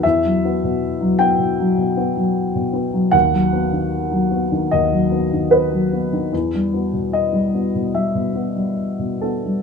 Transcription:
<<
  \new Staff \with { instrumentName = "Upright piano" } { \time 4/4 \key e \minor \tempo 4 = 75 e''4. g''2~ g''8 | fis''2 dis''4 b'4 | r4 dis''4 e''4. a'8 | }
  \new Staff \with { instrumentName = "Upright piano" } { \clef bass \time 4/4 \key e \minor e,16 fis16 <b fis'>16 b,8 fis16 <b fis'>16 b,16 fis16 b,16 <b fis'>16 fis8 b,16 <b fis'>16 fis16 | dis,16 fis16 <b fis'>16 dis8 fis16 <b fis'>16 dis16 dis,16 fis16 <b fis'>16 dis8 fis16 <b fis'>16 dis16 | e,16 g16 <b fis'>16 b,8 g16 <b fis'>16 b,16 g16 b,16 <b fis'>16 g8 b,16 <b fis'>16 g16 | }
>>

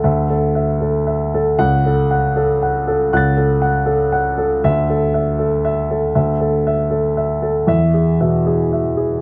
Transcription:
<<
  \new Staff \with { instrumentName = "Grand piano" } { \time 3/4 \key d \lydian \tempo 4 = 118 << { r2. | fis''4 r2 | <fis''' a'''>2. | e''4 r2 |
r2. | e''4 r2 | } \\ { <a' e''>8 a'8 e''8 a'8 e''8 a'8 | r8 a'8 fis''8 a'8 fis''8 a'8 | fis''8 a'8 fis''8 a'8 fis''8 a'8 | r8 a'8 e''8 a'8 e''8 a'8 |
e''8 a'8 e''8 a'8 e''8 a'8 | r8 gis'8 e''8 gis'8 e''8 gis'8 | } >> }
  \new Staff \with { instrumentName = "Grand piano" } { \clef bass \time 3/4 \key d \lydian d,2. | cis,2. | cis,2. | d,2. |
d,2. | e,4 b,8 r4. | }
>>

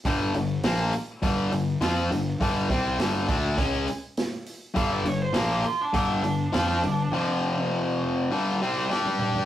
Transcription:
<<
  \new Staff \with { instrumentName = "Lead electric guitar" } { \time 4/4 \key g \minor \tempo 4 = 102 r1 | r1 | f''16 d''16 cis''16 c''16 bes'16 g'16 f'16 d'16 d'2~ | d'4 r2. | }
  \new Staff \with { instrumentName = "Distorted electric guitar" } { \clef bass \time 4/4 \key g \minor <g, d g>8 <g, d>8 <bes, f bes>8 r8 <g, d g>8 <g, d>8 <f c' f'>8 <g, d>8 | <g, d g>8 <c g c'>8 <g, d g>8 <d a d'>8 <cis aes cis'>8 r4. | <g, d g>8 <g, d>8 <bes, f bes>8 r8 <g, d g>8 <g, d>8 <f c' f'>8 <g, d>8 | <f, c f>2 <g, d g>8 <c g c'>8 <g d' g'>4 | }
  \new Staff \with { instrumentName = "Picked electric bass" } { \clef bass \time 4/4 \key g \minor g,,8 g,,8 bes,,8 r8 g,,8 g,,8 f,8 g,,8 | g,,8 c,8 g,,8 d,8 cis,8 r4. | g,,8 g,,8 bes,,8 r8 g,,8 g,,8 f,8 g,,8 | r1 | }
  \new DrumStaff \with { instrumentName = "Drums" } \drummode { \time 4/4 <hho bd>8 hho8 <hho sn>8 hho8 <hho bd>8 hho8 <hho sn>8 hho8 | <hho bd>8 <hho bd>8 <hho sn>8 <hho bd>8 <hho bd>8 hho8 <hho sn>8 hho8 | <hho bd>8 hho8 <hho sn>8 hho8 <hho bd>8 hho8 <hho sn>8 hho8 | r4 r4 r4 sn16 tommh16 toml16 tomfh16 | }
>>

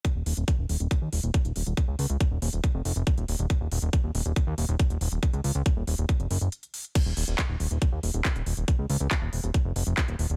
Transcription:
<<
  \new Staff \with { instrumentName = "Analog synth bass" } { \clef bass \time 4/4 \key ees \minor \tempo 4 = 139 r16 ees,,16 ees,,16 ees,,16 r16 ees,,16 ees,,16 ees,,16 r16 ees,16 ees,,16 ees,,16 r16 ees,,16 ees,,16 ees,,16 | r16 des,16 des,16 des,16 r16 ees,,16 ees,,16 ees,,16 r16 f,,16 f,,16 f,,16 r16 ees,,16 ees,,16 ees,,16 | r16 ees,,16 ees,,16 ees,,16 r16 ees,,16 ees,,16 ees,,16 r16 ees,16 ees,,16 ees,,16 r16 ees,,16 ees,,16 ees,,16 | r16 des,16 des,16 des,16 r16 ees,,16 ees,,16 ees,,16 r16 f,,16 ges,,16 ges,,16 r4 |
r16 ees,,16 ees,,16 ees,,16 r16 ees,,16 ees,,16 ees,,16 r16 ees,16 ees,,16 ees,,16 r16 ees,,16 ees,,16 ees,,16 | r16 des,16 des,16 des,16 r16 ees,,16 ees,,16 ees,,16 r16 f,,16 f,,16 f,,16 r16 ees,,16 ees,,16 ees,,16 | }
  \new DrumStaff \with { instrumentName = "Drums" } \drummode { \time 4/4 <hh bd>8 hho16 hh16 <hh bd>8 hho16 hh16 <hh bd>8 hho16 hh16 <hh bd>16 hh16 hho16 hh16 | <hh bd>8 hho16 hh16 <hh bd>8 hho16 hh16 <hh bd>8 hho16 hh16 <hh bd>16 hh16 hho16 hh16 | <hh bd>8 hho16 hh16 <hh bd>8 hho16 hh16 <hh bd>8 hho16 hh16 <hh bd>16 hh16 hho16 hh16 | <hh bd>16 hh16 hho16 hh16 <hh bd>8 hho16 hh16 <hh bd>16 hh16 hho16 hh16 hh16 hh16 hho16 hh16 |
<cymc hh bd>8 hho16 hh16 <hc hh bd>8 hho16 hh16 <hh bd>8 hho16 hh16 <hc hh bd>16 hh16 hho16 hh16 | <hh bd>8 hho16 hh16 <hc hh bd>8 hho16 hh16 <hh bd>8 hho16 hh16 <hc hh bd>16 hh16 hho16 hh16 | }
>>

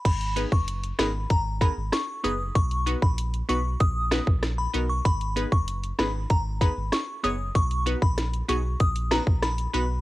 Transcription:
<<
  \new Staff \with { instrumentName = "Synth bell" } { \time 4/4 \key gis \minor \tempo 4 = 96 b''8 r16 cis'''16 r8 b''16 r16 ais''16 r16 b''16 r16 cis'''16 r16 dis'''16 r16 | cis'''8 r16 b''16 r8 cis'''16 r16 dis'''8. r8 b''16 r16 cis'''16 | b''8 r16 cis'''16 r8 b''16 r16 ais''16 r16 b''16 r16 cis'''16 r16 dis'''16 r16 | cis'''8 r16 b''16 r8 cis'''16 r16 dis'''16 r16 ais''16 r16 b''16 r16 b''16 r16 | }
  \new Staff \with { instrumentName = "Synth stab" } { \time 4/4 \key gis \minor r8 <b dis' gis' b'>8 r8 <b dis' gis' ais'>8 r8 <b dis' gis' ais'>8 r8 <b dis' gis' b'>8 | r8 <b dis' fis' b'>8 r8 <b dis' fis' b'>8 r8 <b dis' fis' b'>8 r8 <b dis' fis' ais'>8 | r8 <b dis' gis' b'>8 r8 <b dis' gis' b'>8 r8 <b dis' gis' b'>8 r8 <b dis' gis' cis''>8 | r8 <b dis' fis' b'>8 r8 <b dis' fis' gis'>8 r8 <b dis' fis' b'>8 r8 <b dis' fis' b'>8 | }
  \new Staff \with { instrumentName = "Sub bass" } { \clef bass \time 4/4 \key gis \minor gis,,8. fis,,8. gis,,8 gis,,8. gis,,16 r8 fis,,8 | b,,8. ais,,8. b,,8 ais,,8. ais,,8. b,,8 | gis,,8. fis,,8. gis,,8 gis,,8. gis,,16 r8 fis,,8 | b,,8. ais,,8. b,,8 ais,,8. ais,,8. b,,8 | }
  \new DrumStaff \with { instrumentName = "Drums" } \drummode { \time 4/4 <cymc hh bd>16 hh16 hh16 bd16 hh16 hh16 <hh ss sn>8 <hh bd>8 <hh bd>8 <hh ss sn>8 hh8 | <hh bd>16 hh16 hh16 bd16 hh16 hh16 hh8 <hh bd>8 <hh ss sn>16 bd16 <hh ss sn>8 hh8 | <hh bd>16 hh16 hh16 bd16 hh16 hh16 <hh ss sn>8 <hh bd>8 <hh bd>8 <hh ss sn>8 hh8 | <hh bd>16 hh16 hh16 bd16 <hh ss sn>16 hh16 hh8 <hh bd>16 hh16 <hh ss sn>16 bd16 <hh ss sn>16 hh16 hh8 | }
>>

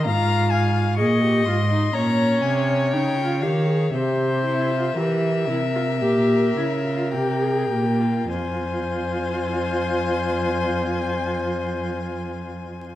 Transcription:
<<
  \new Staff \with { instrumentName = "Violin" } { \time 4/4 \key f \minor \tempo 4 = 55 bes''8 aes''8 des'''8 c'''8 bes''8 aes''8 g''8 f''8 | e''2. g''4 | aes''1 | }
  \new Staff \with { instrumentName = "Violin" } { \time 4/4 \key f \minor f''8 f''8 ees''4 des''2 | c''4 bes'2. | c''1 | }
  \new Staff \with { instrumentName = "Viola" } { \time 4/4 \key f \minor f'4 aes'16 g'16 f'16 ees'16 des'4 ees'16 f'16 g'16 aes'16 | g'8 e'16 f'16 g'8 e'16 f'16 g'8 e'16 f'16 g'16 aes'16 g'16 f'16 | f'1 | }
  \new Staff \with { instrumentName = "Cello" } { \clef bass \time 4/4 \key f \minor aes,4 bes,8 aes,8 bes,8 c8 des8 ees8 | c4 e8 c8 bes,8 des8 c8 bes,8 | f,1 | }
>>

